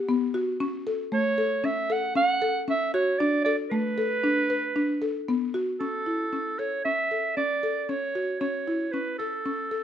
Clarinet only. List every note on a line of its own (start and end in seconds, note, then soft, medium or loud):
1.14 1.66 C#5 medium
1.65 1.93 E5 medium
1.92 2.16 F#5 medium
2.16 2.64 F#5 loud
2.70 2.93 E5 medium
2.94 3.20 C#5 medium
3.19 3.44 D5 medium
3.45 3.57 D5 medium
3.70 5.23 B4 medium
5.80 6.60 A4 medium
6.59 6.84 C#5 medium
6.85 7.33 E5 medium
7.37 7.91 D5 medium
7.89 8.39 C#5 medium
8.40 8.93 C#5 medium
8.92 9.18 B4 medium
9.18 9.84 A4 medium